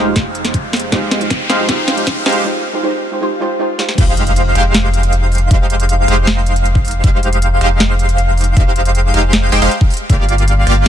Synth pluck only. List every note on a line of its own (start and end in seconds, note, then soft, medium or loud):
0.04 0.89 G#3 medium
0.04 0.90 D#4 medium
0.04 0.90 F4 medium
0.04 0.91 G4 medium
0.09 0.91 C5 medium
0.91 1.18 G#3 loud
0.91 1.19 D#4 medium
0.91 1.19 F4 medium
0.91 1.19 G4 medium
0.91 1.19 C5 loud
1.20 1.30 G#3 medium
1.20 1.30 D#4 medium
1.20 1.31 F4 medium
1.20 1.31 G4 medium
1.20 1.31 C5 medium
1.57 1.66 G#3 medium
1.57 1.67 D#4 medium
1.57 1.67 F4 medium
1.57 1.68 G4 medium
1.57 1.68 C5 medium
1.68 1.95 G#3 medium
1.68 1.95 D#4 medium
1.68 1.95 F4 medium
1.68 1.95 G4 medium
1.68 1.96 C5 loud
1.96 2.07 G#3 medium
1.96 2.07 D#4 medium
1.96 2.07 F4 medium
1.96 2.07 G4 medium
1.96 2.08 C5 medium
2.34 2.43 G#3 medium
2.34 2.43 D#4 medium
2.34 2.44 F4 medium
2.34 2.44 G4 medium
2.38 2.45 C5 medium
2.44 2.71 G#3 loud
2.44 2.71 D#4 medium
2.44 2.72 F4 medium
2.44 2.72 G4 medium
2.44 2.72 C5 loud
2.73 2.81 G#3 medium
2.73 2.82 D#4 medium
2.73 2.82 F4 medium
2.73 2.82 G4 medium
2.73 2.82 C5 medium
2.82 3.09 G#3 loud
2.82 3.10 D#4 medium
2.82 3.10 F4 medium
2.82 3.10 G4 medium
2.82 3.10 C5 loud
3.11 3.19 G#3 medium
3.11 3.20 D#4 medium
3.11 3.20 F4 medium
3.11 3.20 G4 medium
3.11 3.21 C5 medium
3.21 3.39 G#3 loud
3.21 3.39 D#4 medium
3.21 3.39 F4 medium
3.21 3.40 G4 medium
3.21 3.40 C5 loud
3.40 3.58 G#3 loud
3.40 3.58 D#4 medium
3.40 3.58 F4 medium
3.40 3.59 G4 loud
3.40 3.59 C5 loud
3.59 3.77 G#3 loud
3.59 3.77 D#4 loud
3.59 3.77 F4 medium
3.59 3.78 G4 medium
3.59 3.78 C5 loud
3.78 3.96 G#3 loud
3.78 3.96 D#4 loud
3.78 3.97 F4 loud
3.78 3.97 G4 loud
3.78 3.97 C5 loud